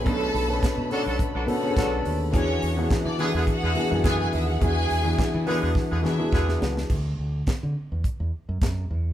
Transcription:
<<
  \new Staff \with { instrumentName = "String section" } { \time 4/4 \key d \lydian \tempo 4 = 105 <a b' b''>1 | <gis' e'' fis''>1~ | <gis' e'' fis''>1 | r1 | }
  \new Staff \with { instrumentName = "String section" } { \time 4/4 \key d \lydian <a' a''>4. r4 <fis' fis''>4 r8 | <cis' cis''>4 r16 <d' d''>16 r16 <e' e''>16 <fis' fis''>4 <gis' gis''>16 <gis' gis''>16 <e' e''>16 <fis' fis''>16 | <gis' gis''>4. r4 <e' e''>4 r8 | r1 | }
  \new Staff \with { instrumentName = "Grand piano" } { \time 4/4 \key d \lydian <b, b cis' d' a'>8. <b, b cis' d' a'>8. <b, b cis' d' a'>8. r16 <b, b cis' d' a'>16 <b, b cis' d' gis' a'>4 r16 | <e b d' fis' gis'>8. <e b d' fis' gis'>8. <e b d' fis' gis'>8. r16 <e b d' fis' gis'>16 <e b d' fis' gis'>4 r16 | <e b d' fis' gis'>8. <e b d' fis' gis'>8. <e b d' fis' b'>8. r16 <e b d' fis' gis'>16 <e b d' fis' gis'>4 r16 | r1 | }
  \new Staff \with { instrumentName = "Horn section" } { \time 4/4 \key d \lydian r4. <fis d' a'>16 <fis d' a'>16 r16 <fis d' a'>16 r8 <fis d' a'>8. r16 | r4. <d b gis'>16 <d b gis'>16 r16 <d b gis'>16 r8 <d b gis'>8. r16 | r4. <d b gis'>16 <d b gis'>16 r16 <d b gis'>16 r8 <d b gis'>8. r16 | r1 | }
  \new Staff \with { instrumentName = "Fingered electric bass" } { \clef bass \time 4/4 \key d \lydian b,,8 b,,8 r16 b,16 r16 b,,16 r16 b,,16 b,8 b,,8 dis,8 | e,8 e,8 r16 e16 r16 e,16 r16 e,16 r16 fis,16 fis,8 dis,8 | e,8 e,8 r16 e16 r16 e,16 r16 e,16 e8 e,8 cis,8 | d,8 d,8 r16 d16 r16 e,16 r16 e,16 r16 fis,16 fis,8 e,8 | }
  \new DrumStaff \with { instrumentName = "Drums" } \drummode { \time 4/4 <hh bd>8 hho8 <hc hh bd sn>8 hho8 <hh bd>8 hho8 <hc hh bd sn>8 hho8 | <hh bd>8 hho8 <hc hh bd sn>8 hho8 <hh bd>8 hho8 <hc hh bd sn>8 hho8 | <hh bd>8 hho8 <hc hh bd sn>8 hho8 <bd sn>8 sn8 <bd sn>16 sn16 sn16 sn16 | <cymc bd>4 <hc hh bd sn>4 <hh bd>4 <hc hh bd sn>4 | }
>>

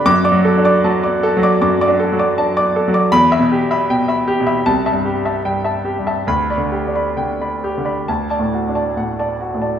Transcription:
<<
  \new Staff \with { instrumentName = "Grand piano" } { \time 4/4 \key d \mixolydian \tempo 4 = 76 << { d'''8 r2. r8 | b''8 r4. a''8 r4. | b''8 r4. a''8 r4. | } \\ { r16 <d'' d'''>16 a'16 <d'' d'''>16 a''16 <d'' d'''>16 a'16 <d'' d'''>16 d'''16 <d'' d'''>16 a'16 <d'' d'''>16 a''16 <d'' d'''>16 a'16 <d'' d'''>16 | r16 <e'' b''>16 g'16 <e'' b''>16 g''16 <e'' b''>16 g'16 <e'' b''>16 r16 <e'' a''>16 g'16 <e'' a''>16 g''16 <e'' a''>16 g'16 <e'' a''>16 | r16 <d'' b''>16 g'16 <d'' b''>16 g''16 <d'' b''>16 g'16 <d'' b''>16 r16 <d'' a''>16 fis'16 <d'' a''>16 fis''16 <d'' a''>16 fis'16 <d'' a''>16 | } >> }
  \new Staff \with { instrumentName = "Grand piano" } { \clef bass \time 4/4 \key d \mixolydian \tuplet 3/2 { fis,8 fis8 d'8 fis4 fis8 fis,8 d'8 fis8 d'4 fis8 } | \tuplet 3/2 { e,8 b,4 b,4 b,8 c,8 g,4 g,4 g,8 } | \tuplet 3/2 { d,8 d8 d'8 d4 d8 d,8 a,8 d'8 a,4 a,8 } | }
>>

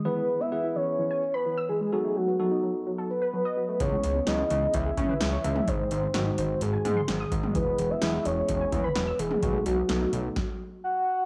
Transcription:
<<
  \new Staff \with { instrumentName = "Soft synth lead" } { \time 4/4 \key e \major \tempo 4 = 128 b'8. e''8. cis''4~ cis''16 b'8. gis'8 | gis'8 fis'4 r4 b'4. | cis''4 dis''4 e''4. e''8 | bis'4. bis'8 gis'4. r8 |
b'8. e''8. cis''4~ cis''16 b'8. gis'8 | gis'8 fis'4 r4. fis''4 | }
  \new Staff \with { instrumentName = "Tine electric piano" } { \time 4/4 \key e \major <b e' gis' b'>8. r16 <b e' gis' b'>4. r4. | <b dis' fis' a'>8. r16 <b dis' fis' a'>4. r4. | <b cis' e' gis'>8. r16 <b cis' e' gis'>4. r4. | <gis bis dis' gis'>8. r16 <gis bis dis' fis'>4. r4. |
<gis b e' gis'>8. r16 <gis b e' gis'>4. r4. | <a b dis' fis'>8. r16 <a b dis' a'>4 r2 | }
  \new Staff \with { instrumentName = "Synth pluck" } { \clef bass \time 4/4 \key e \major e16 gis16 e16 b16 e16 e'16 e16 r16 e16 gis''16 r16 b''16 e16 e'''16 e16 gis16 | fis16 a16 fis16 b16 fis16 dis'16 fis16 r16 fis16 a'16 r16 b'16 fis16 dis''16 fis16 a16 | e16 gis16 e16 b16 e16 cis'16 e16 r16 e16 gis'16 r16 b'16 e16 cis''16 e16 gis16 | dis16 gis16 dis16 bis16 dis16 dis'16 dis16 r16 dis16 gis''16 r16 bis''16 dis16 dis'''16 dis16 gis16 |
e16 gis16 e16 b16 e16 e'16 e16 r16 e16 gis''16 r16 b''16 e16 e'''16 e16 gis16 | fis16 a16 fis16 b16 fis16 dis'16 fis16 r2 r16 | }
  \new Staff \with { instrumentName = "Analog synth bass" } { \clef bass \time 4/4 \key e \major r1 | r1 | cis,8 cis,8 cis,8 cis,8 cis,8 cis8 cis,8 cis,8 | gis,,8 gis,,8 gis,,8 gis,,8 gis,,8 gis,8 gis,,8 gis,,8 |
e,,8 e,,8 e,,8 e,,8 e,,8 e,8 e,,8 e,,8 | b,,8 b,,8 b,,8 b,,8 r2 | }
  \new DrumStaff \with { instrumentName = "Drums" } \drummode { \time 4/4 r4 r4 r4 r4 | r4 r4 r4 r4 | <hh bd>8 hh8 <hh sn>8 hh8 <hh bd>8 <hh bd toml>8 <hh sn>8 hh16 toml16 | <hh bd>8 hh8 <hh sn>8 hh8 hh8 <hh toml>8 <hh sn>8 <hh bd>16 toml16 |
<hh bd>8 hh8 <hh sn>8 hh8 <hh bd>8 <hh bd toml>8 <hh sn>8 hh16 toml16 | <hh bd>8 hh8 <hh sn>8 hh8 <bd sn>4 r4 | }
>>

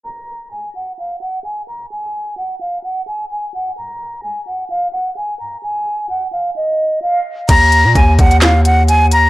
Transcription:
<<
  \new Staff \with { instrumentName = "Flute" } { \time 4/4 \key ees \minor \tempo 4 = 129 bes''4 aes''8 ges''8 f''8 ges''8 aes''8 bes''8 | aes''4 ges''8 f''8 ges''8 aes''8 aes''8 ges''8 | bes''4 aes''8 ges''8 f''8 ges''8 aes''8 bes''8 | aes''4 ges''8 f''8 ees''4 f''8 r8 |
bes''4 aes''8 ges''8 f''8 ges''8 aes''8 bes''8 | }
  \new Staff \with { instrumentName = "808-style bass" } { \clef bass \time 4/4 \key ees \minor r1 | r1 | r1 | r1 |
ees,8. bes,16 ees,8 ees,2~ ees,8 | }
  \new DrumStaff \with { instrumentName = "Drums" } \drummode { \time 4/4 r4 r4 r4 r4 | r4 r4 r4 r4 | r4 r4 r4 r4 | r4 r4 r4 r4 |
<cymc hh bd>8 hh8 <hh bd>8 <hh bd>16 hh16 <hc hh sn>8 hh8 hh8 hh8 | }
>>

